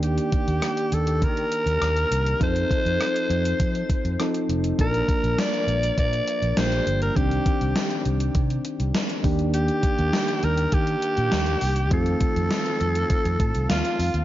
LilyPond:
<<
  \new Staff \with { instrumentName = "Alto saxophone" } { \time 4/4 \key ees \lydian \tempo 4 = 101 g'4. a'8 bes'2 | c''2.~ c''8 r8 | bes'4 d''4 d''4 c''8. bes'16 | g'4. r2 r8 |
g'4. bes'8 g'2 | a'2. f'4 | }
  \new Staff \with { instrumentName = "Synth keys" } { \time 4/4 \key ees \lydian << { r1 | r1 | r1 | r1 |
r1 | r2 r8 a''8 f''4 | } \\ { <ees bes d' g'>2.~ <ees bes d' g'>8 r8 | <f c' ees' a'>2. <f c' ees' a'>4 | <f bes d' bes'>2. <f bes d' g'>4 | <ees c' d' g'>2.~ <ees c' d' g'>8 <ees bes d' g'>8~ |
<ees bes d' g'>2.~ <ees bes d' g'>8 r8 | <ees a c' f'>1 | } >> }
  \new Staff \with { instrumentName = "Fingered electric bass" } { \clef bass \time 4/4 \key ees \lydian ees,8 r16 ees,16 r8 ees,8 ees8 r16 ees,16 ees,8 c,8 | f,8 r16 f,16 r8 f,8 f8 r16 f,16 r8 f,,8 | bes,,8 r16 bes,,16 r8 bes,,8 bes,8 r16 bes,,16 bes,,8 g,,8 | c,8 r16 c,16 r8 c,8 c8 r16 c,16 r8 ees,8~ |
ees,8 r16 ees,16 r8 ees,8 ees8 r16 bes,16 ees,8 c,8 | f,8 r16 f,16 r8 f,8 r16 f,16 a,16 c,16 ees,16 r16 f,16 ees,16 | }
  \new DrumStaff \with { instrumentName = "Drums" } \drummode { \time 4/4 hh16 hh16 <hh bd>16 hh16 <hh ss>16 hh16 hh16 hh16 <hh bd>16 hh16 hh16 hh16 <hh ss>16 hh16 hh16 hh16 | <hh bd>16 hh16 <hh bd>16 hh16 <hh ss>16 hh16 hh16 hh16 <hh bd>16 hh16 <hh bd>16 hh16 <hh ss>16 hh16 hh16 hh16 | <hh bd>16 hh16 <hh bd>16 hh16 <hh sn>16 hh16 hh16 hh16 <hh bd>16 hh16 hh16 hh16 <hh sn>16 hh16 hh16 hh16 | <hh bd>16 hh16 <hh bd>16 hh16 <hh sn>16 hh16 hh16 hh16 <hh bd>16 hh16 hh16 hh16 <hh sn>16 hh16 <hho bd>16 hh16 |
hh16 hh16 <hh bd>16 hh16 <hh sn>16 hh16 hh16 hh16 <hh bd>16 hh16 hh16 hh16 <hh sn>16 hh16 hho16 hh16 | <hh bd>16 hh16 <hh bd>16 hh16 <hh sn>16 hh16 hh16 hh16 <hh bd>16 hh16 <hh bd>16 hh16 <hh sn>16 hh16 hho16 hh16 | }
>>